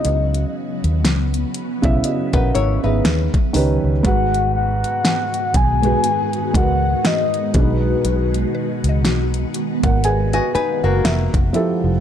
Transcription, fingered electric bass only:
X:1
M:4/4
L:1/16
Q:"Swing 16ths" 1/4=60
K:G#m
V:1 name="Fingered electric bass" clef=bass
C,,2 z D,, C,,2 z B,,, z A,,, G,,, G,,, D,, z C,, C,, | G,,,4 z2 B,,,2 z2 C,,2 z2 B,,,2 | B,,,2 z C,, B,,,2 z G,,,3 z F,,, =F,,, F,,, z F,,, |]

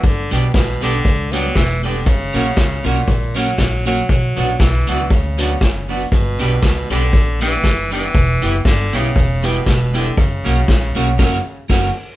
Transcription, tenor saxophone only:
X:1
M:4/4
L:1/8
Q:"Swing" 1/4=118
K:Glyd
V:1 name="Tenor saxophone" clef=bass
D, B,, B,, D,2 F, E, D, | C,3 ^A,,2 F,2 F, | F,2 E, E, C,3 z | B,,3 D,2 E,2 E,- |
E,2 D, C,2 B,,2 D, | C,6 z2 |]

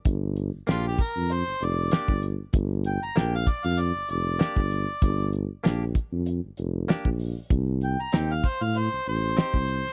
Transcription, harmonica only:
X:1
M:4/4
L:1/16
Q:"Swing 16ths" 1/4=97
K:Gm
V:1 name="Harmonica"
z4 F G B2 c2 d4 z2 | z2 g b g f d f d2 d6- | d2 z12 z2 | z2 g b g f c f c2 c6 |]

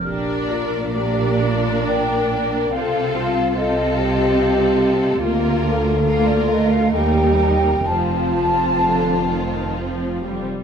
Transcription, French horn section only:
X:1
M:3/4
L:1/8
Q:1/4=66
K:Bb
V:1 name="French horn section"
G F G F B2 | A F A G3 | F A3 G2 | F4- F z |]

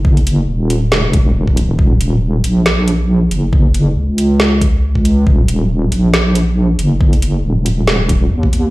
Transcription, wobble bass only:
X:1
M:4/4
L:1/8
Q:"Swing 16ths" 1/4=138
K:Ebphr
V:1 name="Wobble bass" clef=bass
G,,,2 E,,,2 F,,,4 | E,,,3 B,,,4 G,,,- | G,,,2 D,,6 | E,,,3 B,,,4 G,,,- |
G,,,2 E,,,4 E,,2 |]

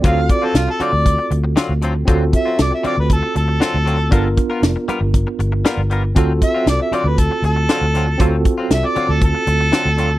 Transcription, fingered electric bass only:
X:1
M:4/4
L:1/16
Q:1/4=118
K:G
V:1 name="Fingered electric bass" clef=bass
D,,2 z2 C,, z2 D,,2 z D,,2 z D,,3 | D,,2 z2 C,, z2 D,,2 z D,,2 z D,,3 | G,,,2 z2 =F,,, z2 G,,,2 z G,,,2 z G,,,3 | D,,2 z2 C,, z2 D,,2 z D,,2 z D,,3 |
D,,2 z2 C,, z2 D,,2 z D,,2 z D,,3 |]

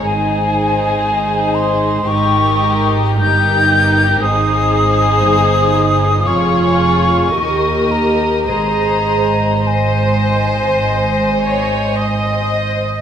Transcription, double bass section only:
X:1
M:4/4
L:1/8
Q:1/4=55
K:Ab
V:1 name="Double bass section" clef=bass
A,,,4 A,,,2 G,,,2 | A,,,2 G,,,2 F,,,2 E,,2 | A,,,8 |]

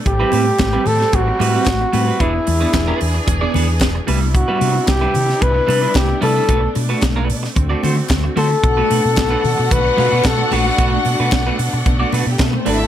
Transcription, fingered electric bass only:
X:1
M:4/4
L:1/16
Q:1/4=112
K:Bphr
V:1 name="Fingered electric bass" clef=bass
A,,,2 A,,2 A,,,2 A,,2 A,,,2 A,,2 A,,,2 A,,2 | E,,,2 E,,2 E,,,2 E,,2 E,,,2 E,,2 E,,,2 C,,2- | C,,2 C,2 C,,2 C,2 C,,2 C,2 C,,2 C,2 | B,,,2 B,,2 B,,,2 B,,2 D,,2 D,2 D,,2 D,2 |
B,,,2 B,, B,, B,,,2 B,, B,, B,,,2 B,, B,, B,,2 _B,,,2 | B,,,2 B,, B,, B,,,2 B,, B,, B,,,2 B,, B,, B,,2 ^G,,,2 |]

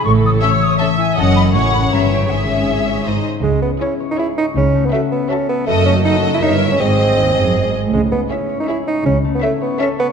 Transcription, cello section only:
X:1
M:3/4
L:1/16
Q:1/4=160
K:C#m
V:1 name="Cello section" clef=bass
A,,4 z8 | F,,4 A,,4 =G,,4 | G,,8 G,,2 z2 | C,4 z8 |
C,4 z8 | F,,8 =G,,4 | G,,4 D,,2 F,,2 G,,3 A,, | C,4 z8 |
C,4 z8 |]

